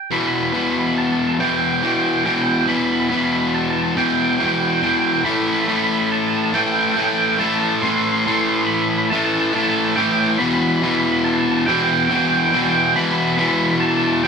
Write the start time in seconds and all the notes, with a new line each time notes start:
Already playing: G5
0.11 E2 B2 E3 B5
0.19 B5
0.27 B5
0.35 B5
0.42 B5
0.49 B5
0.54 E2 B2 E3 B5
0.64 B5
0.71 B5
0.79 B5
0.87 B5
0.98 A5
1.06 A5
1.12 A5
1.19 A5
1.27 A5
1.35 A5
1.39 E2 B2 E3 G5
1.48 G5
1.57 G5
1.64 G5
1.71 G5
1.78 G5
1.83 E2 B2 E3 G5
1.94 G5
2.02 G5
2.10 G5
2.17 G5
2.25 E2 B2 E3 G5
2.32 G5
2.42 G5
2.50 G5
2.57 G5
2.67 E2 B2 E3 B5
2.76 B5
2.84 B5
2.92 B5
3.00 B5
3.09 E2 B2 E3 B5
3.16 B5
3.24 B5
3.33 B5
3.40 B5
3.49 B5
3.55 A5
3.62 A5
3.70 A5
3.76 A5
3.84 A5
3.91 A5
3.96 E2 B2 E3 G5
4.13 G5
4.21 G5
4.29 G5
4.35 E2 G5
4.40 B2 E3
4.44 G5
4.58 G5
4.67 G5
4.73 G5
4.82 E2 B2 E3 G5
4.90 G5
4.98 G5
5.05 G5
5.12 G5
5.19 G5
5.25 A2 E3 A3 B5
5.32 B5
5.40 B5
5.48 B5
5.53 B5
5.62 B5
5.68 A2 E3 A3 B5
5.76 B5
5.84 B5
5.91 B5
5.99 B5
6.06 B5
6.12 A5
6.20 A5
6.28 A5
6.35 A5
6.44 A5
6.53 A2 E3 A3 G5
6.63 G5
6.70 G5
6.79 G5
6.87 G5
6.94 A2 E3 A3 G5
7.02 G5
7.11 G5
7.18 G5
7.28 G5
7.35 A2 G5
7.40 E3 A3 A5
7.48 A5
7.54 A5
7.61 A5
7.69 A5
7.76 A5
7.82 A2 E3 A3 C6
7.90 C6
7.96 C6
8.03 C6
8.11 C6
8.19 C6
8.26 A2 E3 A3 C6
8.33 C6
8.40 C6
8.48 C6
8.56 C6
8.63 B5 C6
8.74 B5
8.82 B5
8.90 B5
8.98 B5
9.05 B5
9.10 A2 E3 A3 A5
9.18 A5
9.25 A5
9.34 A5
9.40 A5
9.48 A5
9.54 A2 E3 A3 A5
9.63 A5
9.70 A5
9.77 A5
9.85 A5
9.96 A2 E3 A3 G5
10.04 G5
10.12 G5
10.19 G5
10.27 G5
10.33 G5
10.38 E2 B2 E3 B5
10.45 B5
10.53 B5
10.60 B5
10.68 B5
10.76 B5
10.82 E2 B2 E3 B5
10.90 B5
10.98 B5
11.06 B5
11.11 B5
11.20 B5
11.24 A5
11.32 A5
11.40 A5
11.49 A5
11.57 A5
11.66 E2 B2 E3 G5
11.74 G5
11.82 G5
11.90 G5
11.98 G5
12.05 G5
12.10 E2 B2 E3 G5
12.20 G5
12.27 G5
12.36 G5
12.43 G5
12.52 E2 B2 E3 G5
12.60 G5
12.69 G5
12.76 G5
12.85 G5
12.95 E2 B2 E3 B5
13.11 B5
13.18 B5
13.25 B5
13.34 E2 B5
13.39 B2 E3 B5
13.47 B5
13.56 B5
13.63 B5
13.71 B5
13.77 A5 B5
13.88 A5
13.97 A5
14.05 A5
14.12 A5
14.23 E2 B2 G5